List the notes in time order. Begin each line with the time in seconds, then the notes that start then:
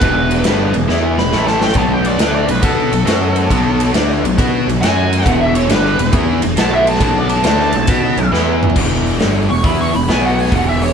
Already playing: B4
0.01 E1 E2 B2 E3 D#4 G4 A4, kick, ride
0.16 D4 F#4 G#4
0.31 ride
0.44 G1 G2 D3 G3, snare, ride
0.74 E1 E2 B2, ride
0.88 E2 E3 B3 E4, snare
1.18 E1 E2 B2 B5, snare
1.32 A1 A2 E3 A3 E4 A4, snare
1.47 A5, snare
1.61 G5, snare
1.68 snare
1.74 B1 B2 F#3 B3 C#4 D#4 A4 A5, kick, ride
1.93 G5
2.05 D5, ride
2.18 D2 D3 A3 D4, snare, ride
2.22 B4
2.35 D5
2.47 B1 B2 F#3 B4, ride
2.62 B2 B3 F#4 A4 B4, kick, ride
2.92 B1 B2 F#3, ride
3.05 F#2 F#3 C#4 F#4 C#5, snare, ride
3.36 ride
3.50 B1 B2 F#3 B3 D#4 A4 C#5, kick, ride
3.80 ride
3.94 D2 D3 A3 D4, snare, ride
4.11 snare
4.24 B1 B2 F#3, ride
4.38 B2 B3 F#4 B4, kick, ride
4.68 B1 B2 F#3, ride
4.82 F#2 F#3 C#4 F#4 C#5 G#5, snare, ride
5.13 ride
5.21 E2 F#5, snare
5.25 E1 B2 E3 D4 F#4 G#4, kick, ride
5.41 E5
5.55 C#5, ride
5.69 G1 G2 D3 G3 B4, snare, ride
5.86 snare
5.98 E1 E2 B2, ride
6.12 E2 E3 B3 E4, kick, ride
6.42 E1 E2 B2, ride
6.56 B1 B2 F#3 B3 F#4 B4 A5, snare, ride
6.74 E5
6.87 A5, ride
6.95 snare
7.00 B1 B2 F#3 B3 C#4 D#4 A4 A5, kick, ride
7.18 D5
7.29 A5, ride
7.44 D2 D3 A3 D4 A5, snare, ride
7.60 snare
7.73 B1 B2 F#3, ride
7.87 B2 B3 F#4 B4, kick, ride
8.17 B1 B2 F#3, ride
8.32 E2 E3 B3 E4 B4, snare
8.63 mid tom
8.70 floor tom
8.76 E1 E2 B2 E3 D4 F#4 G#4, kick, crash
9.06 open hi-hat
9.19 G1 G2 D3 G3, snare, open hi-hat
9.49 E1 E2 B2 C#6, open hi-hat
9.64 E2 E3 B3 E4 B5, kick, open hi-hat
9.81 C#6
9.93 E1 E2 B2 B5, open hi-hat
10.07 B1 B2 F#3 B3 F#4 B4 G#5, snare, open hi-hat
10.25 F#5
10.39 G#5, open hi-hat
10.47 snare
10.52 E1 E2 B2 E3 D4 F#4 G#4 F#5, kick, open hi-hat
10.68 E5
10.82 C#5, open hi-hat